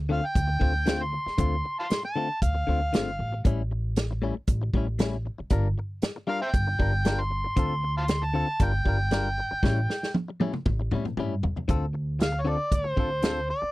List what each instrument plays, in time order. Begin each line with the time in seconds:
Already playing: upright bass D2
0.09 clean electric guitar D3 A3 C4 F4, harmonica F5
0.22 harmonica G5, muted clean electric guitar stroke
0.35 upright bass D2, kick, closed hi-hat
0.47 muted clean electric guitar stroke
0.60 upright bass D2, clean electric guitar D3 A3 C4 F4, kick
0.74 muted clean electric guitar stroke
0.86 clean electric guitar D3 A3 C4 F4, snare, closed hi-hat
1.02 harmonica C6
1.12 muted clean electric guitar stroke
1.26 muted upright bass stroke, muted clean electric guitar stroke, snare
1.38 upright bass D2, clean electric guitar D3 A3 C4 F4, kick, closed hi-hat
1.64 muted clean electric guitar stroke
1.79 harmonica F5 A5 C6
1.90 muted clean electric guitar stroke, snare, closed hi-hat
2.03 harmonica A5, muted clean electric guitar stroke
2.16 clean electric guitar D3 A3 C4 F4
2.29 muted clean electric guitar stroke
2.42 upright bass D2, harmonica F5, kick, closed hi-hat
2.55 muted clean electric guitar stroke
2.67 upright bass D2, clean electric guitar D3 A3 C4 F4
2.93 upright bass G1, clean electric guitar D3 A3 C4 F4, snare, closed hi-hat
3.19 upright bass A1, muted clean electric guitar stroke
3.33 muted clean electric guitar stroke
3.45 upright bass A1, clean electric guitar A2 G3 C#4 E4, kick, closed hi-hat
3.71 muted clean electric guitar stroke
3.96 muted clean electric guitar stroke, snare, closed hi-hat
4.11 muted clean electric guitar stroke
4.22 clean electric guitar A2 G3 C#4 E4
4.35 muted clean electric guitar stroke
4.47 upright bass A1, kick, closed hi-hat
4.62 muted clean electric guitar stroke
4.74 upright bass A1, clean electric guitar A2 G3 C#4 E4, kick
4.99 clean electric guitar A2 G3 C#4 E4, snare, closed hi-hat
5.25 muted clean electric guitar stroke
5.38 muted clean electric guitar stroke, muted upright bass stroke
5.50 upright bass G1, clean electric guitar G3 D4 F4 A#4, kick, closed hi-hat
5.78 muted clean electric guitar stroke
6.02 muted clean electric guitar stroke, snare, closed hi-hat
6.16 muted clean electric guitar stroke
6.27 clean electric guitar G3 D4 F4 A#4, harmonica F5
6.41 harmonica C5 E5 G5, muted clean electric guitar stroke
6.53 upright bass G1, kick, closed hi-hat
6.67 muted clean electric guitar stroke
6.79 upright bass G1, clean electric guitar G3 D4 F4 A#4, kick
6.93 muted clean electric guitar stroke
7.05 clean electric guitar G3 D4 F4 A#4, snare, closed hi-hat
7.20 harmonica C6
7.30 muted clean electric guitar stroke
7.44 muted clean electric guitar stroke
7.56 upright bass D2, clean electric guitar D3 C4 F4 A4, kick, closed hi-hat
7.83 muted clean electric guitar stroke
7.98 harmonica F5 A5 C6
8.08 muted clean electric guitar stroke, snare, closed hi-hat
8.22 harmonica A5, muted clean electric guitar stroke
8.34 clean electric guitar D3 C4 F4 A4
8.48 muted clean electric guitar stroke
8.59 upright bass G1, clean electric guitar G3 D4 F4 A#4, kick, closed hi-hat
8.64 harmonica G5
8.73 muted clean electric guitar stroke
8.85 upright bass G1, clean electric guitar G3 D4 F4 A#4, kick
8.99 muted clean electric guitar stroke
9.11 clean electric guitar G3 D4 F4 A#4, snare, closed hi-hat
9.38 muted clean electric guitar stroke
9.51 muted clean electric guitar stroke, muted upright bass stroke
9.63 upright bass A1, clean electric guitar A2 G3 C#4 E4, kick, snare
9.89 muted clean electric guitar stroke, snare
10.03 snare
10.14 muted clean electric guitar stroke, high tom
10.28 muted clean electric guitar stroke
10.40 clean electric guitar A2 G3 C#4 E4, high tom
10.53 muted clean electric guitar stroke, mid tom
10.66 upright bass A1, kick, mid tom
10.80 muted clean electric guitar stroke
10.91 clean electric guitar A2 G3 C#4 E4, upright bass A2, mid tom
11.05 muted clean electric guitar stroke, mid tom
11.17 upright bass G2, clean electric guitar A2 G3 C#4 E4, mid tom
11.43 upright bass E2, muted clean electric guitar stroke, floor tom
11.56 muted clean electric guitar stroke, floor tom
11.68 upright bass D2, clean electric guitar D3 C4 F4 A4, kick, closed hi-hat
11.93 muted clean electric guitar stroke
12.19 harmonica F5, muted clean electric guitar stroke, snare, closed hi-hat
12.32 muted clean electric guitar stroke
12.41 clean electric guitar D3 C4, harmonica C#5
12.46 clean electric guitar F4 A4, harmonica D5
12.58 muted clean electric guitar stroke
12.72 upright bass D2, kick, closed hi-hat
12.76 harmonica C5
12.84 muted clean electric guitar stroke
12.97 upright bass D2, clean electric guitar D3 C4 F4 A4, kick
13.11 muted clean electric guitar stroke
13.22 clean electric guitar D3 C4 F4 A4, snare, closed hi-hat
13.49 harmonica D5, muted clean electric guitar stroke
13.62 muted clean electric guitar stroke, muted upright bass stroke